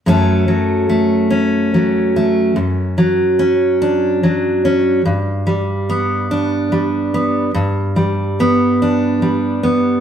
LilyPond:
\new Staff \with { instrumentName = "Steel-string acoustic guitar" } { \time 6/8 \key fis \phrygian \tempo 4. = 48 << { <fis a cis' a'>4 a8 cis'4 a8 | r4 cis'8 d'4 cis'8 | r4 b8 d'4 b8 | r4 b8 d'4 b8 | } \\ { fis,8 fis4. fis4 | fis,8 fis4. fis4 | g,8 g4. g4 | g,8 g4. g4 | } >> }